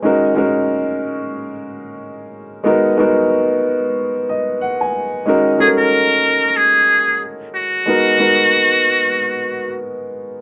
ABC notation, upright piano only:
X:1
M:4/4
L:1/16
Q:"Swing 16ths" 1/4=92
K:F#
V:1 name="Upright piano"
[G,CDFA]2 [G,CDFA]6 z8 | [G,B,DFA]2 [G,B,DFA]6 z2 d2 f g3 | [G,CDFA]2 [G,CDF=A^A]6 z8 | [G,B,DFA]2 [G,B,DFA]6 z8 |]